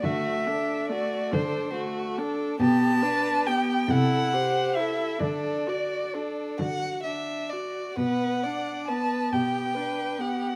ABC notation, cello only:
X:1
M:6/8
L:1/8
Q:3/8=46
K:Dmix
V:1 name="Cello" clef=bass
D,3 D,3 | B,,3 C,3 | D,3 D,3 | B,,3 B,,3 |]